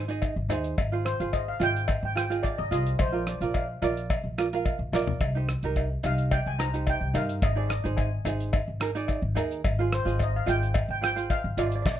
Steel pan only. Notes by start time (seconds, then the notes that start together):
1.05 C5
1.33 D#5
1.48 F5
1.63 G5
2.05 G5
2.17 G5
2.43 D5
2.58 D#5
2.72 D#5
3.01 C5
3.29 D5
3.56 F5
6.06 F5
6.32 G5
6.47 G#5
6.59 A#5
6.90 G5
7.16 F5
7.44 D#5
7.57 D5
7.69 D#5
7.97 G#5
9.94 C5
10.23 D#5
10.36 F5
10.49 G5
10.91 G5
11.04 G5
11.30 F5
11.58 D5
11.66 D5
11.75 D5
11.82 D5
11.89 D5
11.96 D5